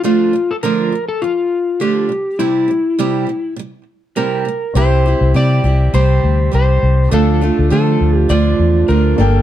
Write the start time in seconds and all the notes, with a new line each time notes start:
0.04 D3 F3 A3 D4 F4
0.33 D3 F3
0.51 A4
0.63 D3 F3 A3 D4 F4 A#4
0.92 D3 F3
1.08 A4
1.22 D3 F3 F4
1.80 D3 F3 A3 D4 F4 G4
2.09 C3 G3
2.39 C3 G3 C4 E4 G4
2.68 C3 G3
2.99 C3 G3 C4 E4 G4
3.27 C3
3.56 C3 G3
4.16 C3 G3 C4 E4 G4 A#4
4.45 C3 G3
4.74 C2 C3 G3 C4 E4 G4 C5
4.78 E5
5.06 C4 E4 G4
5.21 C2
5.34 C3 G3 C4 E4 G4 D5
5.64 C2 C4 E4 G4
5.94 C2 C3 G3 C4 E4 G4 C5
6.24 D2
6.52 C2 G3 C4 E4 G4 C5
6.83 C2
7.09 D2 D3 F3 A3 D4 A4
7.13 F4 A4 F5
7.41 A3 D4 F4
7.59 D2
7.70 D3 F3 A3 D4 F4 A4
8.01 D2
8.19 G4
8.29 D2 D3 F3 A3 D4 F4 D5
8.59 E2
8.88 D2 F3 A3 D4 F4 A#4
9.16 G1 A#3 D4 A4
9.20 G3 G5